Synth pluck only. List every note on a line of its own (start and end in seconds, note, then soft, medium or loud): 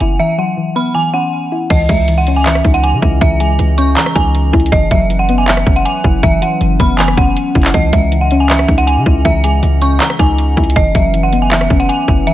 0.00 0.18 E3 medium
0.00 0.20 B3 loud
0.00 0.58 C#4 medium
0.00 0.95 E4 medium
0.19 0.56 E3 medium
0.38 1.32 F#3 medium
0.57 0.94 E3 medium
0.76 1.70 B3 loud
0.95 1.69 E3 medium
1.14 1.70 C#4 medium
1.52 1.71 E4 medium
1.71 2.07 E3 medium
1.89 2.83 G#3 medium
2.08 2.45 E3 medium
2.28 3.22 C#4 medium
2.46 3.20 E3 medium
2.64 3.59 D#4 medium
3.02 3.97 E4 medium
3.21 3.58 E3 medium
3.40 4.35 G#3 medium
3.59 3.95 E3 medium
3.78 4.72 C#4 medium
3.97 4.71 E3 medium
4.16 4.72 D#4 medium
4.53 4.72 E4 medium
4.72 5.09 E3 medium
4.91 5.85 F#3 medium
5.10 5.46 E3 medium
5.29 6.23 B3 loud
5.47 6.22 E3 medium
5.67 6.61 C#4 medium
6.05 6.99 E4 medium
6.23 6.60 E3 medium
6.41 7.36 F#3 medium
6.61 6.98 E3 medium
6.79 7.74 B3 loud
6.99 7.73 E3 medium
7.17 7.74 C#4 medium
7.56 7.74 E4 medium
7.74 8.11 E3 medium
7.93 8.87 G#3 medium
8.12 8.49 E3 medium
8.32 9.26 C#4 loud
8.50 9.24 E3 medium
8.68 9.63 D#4 medium
9.06 10.00 E4 medium
9.25 9.62 E3 medium
9.44 10.38 G#3 medium
9.63 9.99 E3 medium
9.82 10.76 C#4 medium
10.00 10.75 E3 medium
10.19 10.76 D#4 medium
10.57 10.76 E4 medium
10.76 11.13 E3 medium
10.95 11.89 F#3 medium
11.14 11.50 E3 medium
11.33 12.27 B3 loud
11.51 12.26 E3 medium
11.71 12.34 C#4 medium
12.09 12.34 E4 medium
12.27 12.34 E3 medium